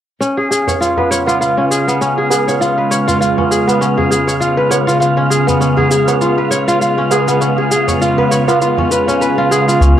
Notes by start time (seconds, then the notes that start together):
0.20 C#3 G#3 B3 C#4 F4 F5, shaker
0.38 G#4
0.51 G#4, shaker
0.67 C#5, tabla tin, tabla ge, shaker
0.81 F4, shaker
0.97 B4, tabla na, tabla tin, tabla ge
1.11 C#5, shaker
1.27 F4, tabla na, shaker
1.41 F4, shaker
1.57 C#4, tabla tin
1.71 G#4, shaker
1.88 B3, shaker
2.01 C#4, shaker
2.17 G#4
2.30 G#4, tabla na, shaker
2.48 C#5, tabla na, shaker
2.61 F4, shaker
2.77 B4
2.91 C#5, shaker
3.07 F4, tabla tin, tabla ge, shaker
3.21 F4, shaker
3.38 C#4, tabla na, tabla tin, tabla ge
3.51 G#4, shaker
3.67 B3, tabla na, shaker
3.81 C#4, shaker
3.97 G#4, tabla ge
4.10 G#4, tabla tin, shaker
4.27 C#5, shaker
4.40 F4, shaker
4.57 B4
4.71 C#5, tabla na, shaker
4.87 F4, tabla tin, shaker
5.00 F4, shaker
5.17 C#4
5.30 G#4, shaker
5.47 B3, tabla tin, tabla ge, shaker
5.61 C#4, shaker
5.77 G#4, tabla na, tabla tin, tabla ge
5.91 G#4, shaker
6.08 C#5, tabla na, shaker
6.21 F4, shaker
6.38 B4, tabla tin
6.51 C#5, shaker
6.68 F4, shaker
6.81 F4, shaker
6.98 C#4
7.11 G#4, tabla na, shaker
7.28 B3, tabla na, shaker
7.41 C#4, shaker
7.58 G#4
7.71 G#4, shaker
7.88 C#5, tabla tin, tabla ge, shaker
8.01 F4, shaker
8.17 B4, tabla na, tabla tin, tabla ge
8.31 C#5, shaker
8.48 F4, tabla na, shaker
8.61 F4, shaker
8.77 C#4, tabla ge
8.91 B4, tabla tin, shaker
9.08 C#4, shaker
9.21 B4, shaker
9.38 F4
9.51 G#4, tabla na, shaker
9.68 F4, tabla tin, shaker
9.81 C#2 C#4, shaker